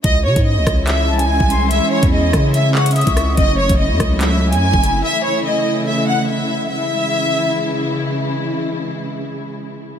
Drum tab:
HH |x-----x-----x---x-----x-----x---|x-----x-----x---x-----xxxxx-x---|x-----x-----x---x-----x-----x---|--------------------------------|
CP |----------------x---------------|--------------------x-----------|----------------x---------------|--------------------------------|
SD |------------r-------------------|------------r---------------r---|------------r-------------------|--------------------------------|
BD |o-----o-----o-------------o-----|------o-----o-------------o-----|o-----o-----o-------------o-----|--------------------------------|

HH |--------------------------------|--------------------------------|
CP |--------------------------------|--------------------------------|
SD |--------------------------------|--------------------------------|
BD |--------------------------------|--------------------------------|